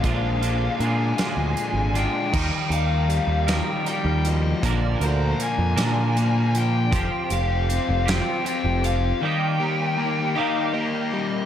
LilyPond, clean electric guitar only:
\new Staff \with { instrumentName = "Clean electric guitar" } { \time 6/8 \key ees \major \tempo 4. = 52 <bes, d aes d' f'>8 <aes d' f'>8 <d aes d' f'>8 <bes, d aes d' f'>4 <aes d' f'>8 | <ees f g ees' bes'>4. <ees f g ees' bes'>4. | <bes, d f bes d' bes'>4. <bes, d f bes d' bes'>4. | <f c' f' g'>4. <f c' f' g'>4. |
<ees g bes ees' g'>4. <ees g bes ees' g'>4. | }